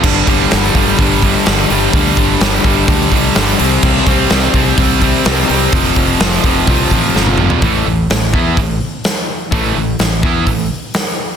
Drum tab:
CC |x---------------|----------------|x---------------|----------------|
HH |--o-o-o-o-o-o-o-|o-o-o-o-o-o-o-o-|--o-o-o-o-o-o-o-|o-o-o-o-o-o-----|
SD |----o-------o---|----o-------o---|----o-------o---|----o-------o---|
T1 |----------------|----------------|----------------|-------------o--|
T2 |----------------|----------------|----------------|--------------o-|
FT |----------------|----------------|----------------|---------------o|
BD |o-o---o-o-o-----|o-o---o-o-o-----|o-o---o-o-o-----|o-o---o-o-o-----|

CC |----------------|----------------|
HH |o---o---o---o---|o---o---o---o---|
SD |----o-------o---|----o-------o---|
T1 |----------------|----------------|
T2 |----------------|----------------|
FT |----------------|----------------|
BD |o-----o-o-------|o-----o-o-------|